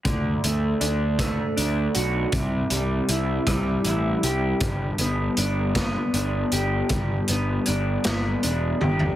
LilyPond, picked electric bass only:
\new Staff \with { instrumentName = "Picked electric bass" } { \clef bass \time 6/8 \key g \major \tempo 4. = 53 d,8 d,8 d,4 d,8 b,,8 | c,8 c,8 c,8 c,8 a,,8 c,8 | g,,8 g,,8 g,,4 g,,8 g,,8 | g,,8 g,,8 g,,8 g,,8 e,,8 g,,8 | }